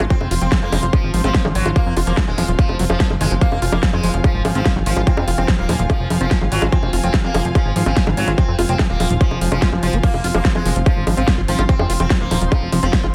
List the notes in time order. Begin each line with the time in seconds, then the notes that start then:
Already playing: F3 C4 F4 F5 C6
0.00 G#1 F4, closed hi-hat, high bongo
0.10 F3 C4, kick, closed hi-hat
0.21 F1, high bongo
0.31 F1 F4, open hi-hat
0.41 F1 F3 C4, closed hi-hat
0.52 F3, kick, snare, closed hi-hat, high bongo
0.62 F2 A#3
0.72 F1 F3, open hi-hat, high bongo
0.83 F1 F3, closed hi-hat
0.93 F3, kick, closed hi-hat, high bongo
1.03 G#1
1.14 G#1 F3, open hi-hat
1.24 G#1 F3 C4, closed hi-hat, high bongo
1.35 kick, snare, closed hi-hat
1.45 G#1 F#3, high bongo
1.55 G#1 F#3, open hi-hat
1.66 G#1 F4, closed hi-hat, high bongo
1.76 F3 A#3, kick, closed hi-hat
1.86 F2
1.97 F1 F4, open hi-hat, high bongo
2.07 F1 F3 A#3, closed hi-hat
2.17 F3, kick, snare, closed hi-hat, high bongo
2.28 D#1 G#3
2.38 D#1 F3, open hi-hat, high bongo
2.48 D#1 F3, closed hi-hat
2.59 F3, kick, closed hi-hat
2.69 F1, high bongo
2.79 F1 F#3, open hi-hat
2.90 F1 F3, high bongo
3.00 F3, kick, snare, closed hi-hat
3.10 F#1 F3, high bongo
3.21 F#1 D#3 G#3, open hi-hat
3.31 F#1 F3, closed hi-hat
3.41 F3 A#3 F4, kick, closed hi-hat
3.52 F1, high bongo
3.62 F1 F4 G#5, open hi-hat
3.72 F1 F3 A#3, closed hi-hat, high bongo
3.83 F3, kick, snare, closed hi-hat
3.93 F2 G#3, high bongo
4.03 F1 F3, open hi-hat
4.14 F1 F3, closed hi-hat
4.24 F3, kick, closed hi-hat, high bongo
4.35 G#1
4.45 G#1 F3, open hi-hat, high bongo
4.55 G#1 F3 C4, closed hi-hat
4.66 kick, snare, closed hi-hat, high bongo
4.76 G#1 F#3
4.86 G#1 F3, open hi-hat
4.97 G#1 F4, closed hi-hat, high bongo
5.07 F3 C4, kick, closed hi-hat
5.17 F2, high bongo
5.28 F1 F4, open hi-hat
5.38 F1 F3 C4, closed hi-hat, high bongo
5.48 F3, kick, snare, closed hi-hat
5.59 D#1 A#3
5.69 D#1 F3, open hi-hat, high bongo
5.79 D#1 F3, closed hi-hat
5.90 F3, kick, closed hi-hat, high bongo
6.00 F1
6.10 F1 F3, open hi-hat, high bongo
6.21 F1 F3 C4, closed hi-hat
6.31 kick, snare, closed hi-hat
6.41 G#1 F#3, high bongo
6.52 G#1 F#3, open hi-hat
6.62 G#1 F4, high bongo
6.72 F3 C4, kick, closed hi-hat
6.83 F1, high bongo
6.93 F1 F4, open hi-hat
7.03 F1 F3 C4, closed hi-hat
7.14 F3, kick, snare, closed hi-hat, high bongo
7.24 F2 A#3
7.34 F1 F3, open hi-hat, high bongo
7.45 F1 F3, closed hi-hat
7.55 F3, kick, closed hi-hat, high bongo
7.66 G#1
7.76 G#1 F3, open hi-hat
7.86 G#1 F3 C4, closed hi-hat, high bongo
7.97 kick, snare, closed hi-hat
8.07 G#1 F#3, high bongo
8.17 G#1 F#3, open hi-hat
8.28 G#1 F4, closed hi-hat, high bongo
8.38 F3 C4, kick, closed hi-hat
8.48 F2
8.59 F1 F4, open hi-hat, high bongo
8.69 F1 F3 C4, closed hi-hat
8.79 F3, kick, snare, closed hi-hat, high bongo
8.90 D#1 A#3
9.00 D#1 F3, open hi-hat, high bongo
9.10 D#1 F3, closed hi-hat
9.21 F3, kick, closed hi-hat
9.31 F1, high bongo
9.41 F1 F3, open hi-hat
9.52 F1 F3, closed hi-hat, high bongo
9.62 F4, kick, snare, closed hi-hat
9.72 F#1 F3, high bongo
9.83 F#1 F3, open hi-hat
9.93 F#1 C4, closed hi-hat
10.03 F3 A#3 C4, kick, closed hi-hat, crash
10.14 F1, high bongo
10.24 F1 F4 C6, open hi-hat
10.34 F1 F3 A#3, high bongo
10.45 F3, kick, snare, closed hi-hat
10.55 F2 G#3, high bongo
10.66 F1 F3, open hi-hat
10.76 F1 F3, closed hi-hat
10.86 F3, kick, closed hi-hat, high bongo
10.97 G#1
11.07 G#1 F3, open hi-hat, high bongo
11.17 G#1 F3 C4, closed hi-hat
11.28 kick, snare, closed hi-hat, high bongo
11.38 G#1 F4
11.48 G#1 F3 C4, open hi-hat
11.59 G#1 F4, closed hi-hat, high bongo
11.69 F3 C4, kick, closed hi-hat
11.79 F2, high bongo
11.90 F1 F4, open hi-hat
12.00 F1 F3 C4, closed hi-hat, high bongo
12.10 F3, kick, snare, closed hi-hat
12.21 D#1 A#3
12.31 D#1 F3 D#4, open hi-hat, high bongo
12.41 D#1 F3, closed hi-hat
12.52 F3, kick, closed hi-hat, high bongo
12.62 F1
12.72 F1 F3, open hi-hat, high bongo
12.83 F1 F3 C4, closed hi-hat
12.93 kick, snare, closed hi-hat
13.03 G#1 F4, high bongo